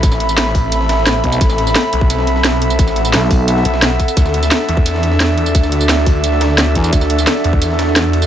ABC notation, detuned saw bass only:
X:1
M:4/4
L:1/8
Q:1/4=174
K:Ador
V:1 name="Detuned saw bass" clef=bass
A,,,2 A,,,4- A,,, z | A,,,2 z B,,,4- B,,, | A,,,2 z3 B,,,2 z | D,,2 z E,,4- E,, |
D,,2 D,,4- D,, z | D,,2 z E,,4- E,, |]